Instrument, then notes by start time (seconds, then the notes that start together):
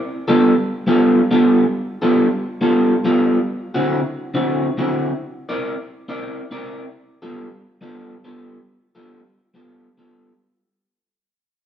clean electric guitar
0.28 G3 B3 F4 A4
0.87 G3 B3 F4 A4
1.31 G3 B3 F4 A4
2.02 G3 B3 F4 A4
2.61 G3 B3 F4 A4
3.04 G3 B3 F4 A4
3.74 D3 C4 E4 F#4
4.34 D3 C4 E4 F#4
4.77 D3 C4 E4 F#4
5.49 C4 E4 A#4 D5
6.08 C4 E4 A#4 D5
6.51 C4 E4 A#4 D5
7.22 G3 B3 F4 A4
7.81 G3 B3 F4 A4
8.24 G3 B3 F4 A4
8.95 G3 B3 F4 A4
9.54 G3 B3 F4 A4
9.98 G3 B3 F4 A4